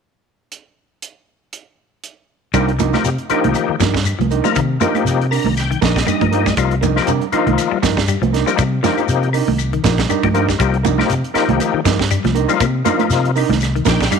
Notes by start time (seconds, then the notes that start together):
0.52 closed hi-hat
1.02 closed hi-hat
1.53 closed hi-hat
2.04 closed hi-hat
2.54 C2 F3 G3 A#3 D4 D#4 G4 A#4, kick, closed hi-hat, claves, shekere
2.69 closed hi-hat
2.79 F3 D4 D#4 A#4, closed hi-hat, high conga, shekere
2.93 F3 A#3 D#4 G4, snare, high conga, claves, shekere
3.04 C3, closed hi-hat, shekere
3.18 closed hi-hat
3.30 F3 A#3 D4 D#4 G4 A#4, muted fingered electric bass stroke, closed hi-hat, claves, shekere
3.44 C2 D#3, closed hi-hat, high conga
3.54 closed hi-hat, claves, shekere
3.69 D#3, muted fingered electric bass stroke
3.80 G2 F3 D4 D#4 A#4, kick, snare, closed hi-hat, high conga, shekere
3.94 G3, kick, snare, shekere
4.05 closed hi-hat, claves, shekere
4.19 C2 F3, closed hi-hat, high conga
4.31 D4 D#4 A#4, closed hi-hat, shekere
4.44 F3 G3 A#3 D#4 A#4, closed hi-hat, high conga, shekere
4.55 C3 D#3, kick, closed hi-hat, claves, shekere
4.80 F3 A#3 D4 D#4 G4 A#4, closed hi-hat, high conga, shekere
4.95 closed hi-hat, high conga, claves, shekere
5.05 C3, closed hi-hat, shekere
5.21 closed hi-hat
5.31 D4 A#4 A#5, muted clean electric guitar stroke, open hi-hat, claves, shekere
5.44 C2 D#3, high conga
5.57 G5, snare, closed hi-hat, claves, shekere
5.71 D#3, closed hi-hat
5.81 A#1 F3 D4 D#4 A#4 D#5, kick, snare, closed hi-hat, high conga, shekere
5.96 G3, kick, snare, closed hi-hat, shekere
6.06 G3 A#3 D4 D#4 D#5, muted clean electric guitar stroke, closed hi-hat, claves, shekere
6.21 G2 F3 D#4 A#4, kick, closed hi-hat, high conga
6.31 F3 A#3 D4 D#4 G4 A#4, closed hi-hat, shekere
6.46 G3, kick, snare, high conga, shekere
6.57 C2 F3 G3 A#3 D#4 F4, kick, closed hi-hat, claves, shekere
6.71 closed hi-hat
6.81 F3 D4 D#4 A#4, closed hi-hat, high conga, shekere
6.96 F3 A#3 D#4 G4, snare, claves, shekere
7.07 C3 G3 D4 A#4, muted clean electric guitar stroke, closed hi-hat, shekere
7.21 closed hi-hat
7.32 F3 A#3 D4 D#4 F4 A#4, muted fingered electric bass stroke, closed hi-hat, claves, shekere
7.47 C2 D#3, closed hi-hat, high conga
7.58 closed hi-hat, claves, shekere
7.71 G3, muted fingered electric bass stroke
7.82 G2 F3 D4 D#4 A#4, kick, snare, closed hi-hat, high conga, shekere
7.97 G3, kick, snare, shekere
8.08 G3, closed hi-hat, claves, shekere
8.22 C2 F3, closed hi-hat, high conga
8.33 D4 D#4 A#4, snare, closed hi-hat, shekere
8.46 F3 G3 A#3 D#4 G4, closed hi-hat, shekere
8.57 C3 G3, kick, closed hi-hat, claves, shekere
8.83 F3 A#3 D4 D#4 G4 A#4, snare, closed hi-hat, high conga, shekere
8.98 closed hi-hat, claves, shekere
9.08 C3, closed hi-hat, shekere
9.23 closed hi-hat
9.33 D4 D#4 A#4, open hi-hat, claves, shekere
9.48 C2 D#3, high conga
9.58 closed hi-hat, claves, shekere
9.73 D#3, closed hi-hat
9.84 A#1 F3 D4 D#4 A#4, kick, snare, closed hi-hat, high conga, shekere
9.98 G3, kick, snare, closed hi-hat, shekere
10.09 G3 D4 D#4 A#4, muted clean electric guitar stroke, closed hi-hat, claves, shekere
10.23 G2 F3 D#4 G4, kick, closed hi-hat, high conga
10.34 F3 A#3 D4 D#4 G4 A#4, closed hi-hat, shekere
10.49 G3, kick, snare, shekere
10.59 C2 F3 G3 A#3 D#4 G4, kick, closed hi-hat, claves, shekere
10.74 closed hi-hat
10.84 F3 D4 D#4 A#4, closed hi-hat, high conga, shekere
10.98 F3 A#3 D#4 G4, snare, high conga, claves, shekere
11.10 C3, closed hi-hat, shekere
11.24 closed hi-hat
11.34 F3 A#3 D#4 G4 A#4, muted fingered electric bass stroke, snare, closed hi-hat, claves, shekere
11.48 C2 D#3, closed hi-hat, high conga
11.60 closed hi-hat, high conga, claves, shekere
11.74 D#3, muted fingered electric bass stroke
11.85 G2 F3 D4 D#4 A#4, kick, snare, closed hi-hat, high conga, shekere
11.99 G3, kick, snare, shekere
12.11 G3, closed hi-hat, claves, shekere
12.24 C2 F3, snare, closed hi-hat, high conga
12.35 D4 D#4 A#4, closed hi-hat, shekere
12.49 F3 G3 A#3 D#4 F4, closed hi-hat, shekere
12.60 C3 A#3, kick, closed hi-hat, claves, shekere
12.85 F3 A#3 D4 D#4 F4 A#4, closed hi-hat, high conga, shekere
12.99 closed hi-hat, high conga, claves, shekere
13.10 C3, snare, closed hi-hat, shekere
13.25 closed hi-hat
13.36 D4 D#4 A#4, open hi-hat, claves, shekere
13.49 C2 D#3, snare, high conga
13.61 snare, closed hi-hat, claves, shekere
13.75 D#3, closed hi-hat
13.85 A#1 F3 D4 D#4 A#4 G5, kick, snare, closed hi-hat, high conga, shekere
14.00 G3, kick, snare, closed hi-hat, shekere
14.11 G3 D4 D#4 F5, muted clean electric guitar stroke, closed hi-hat, claves, shekere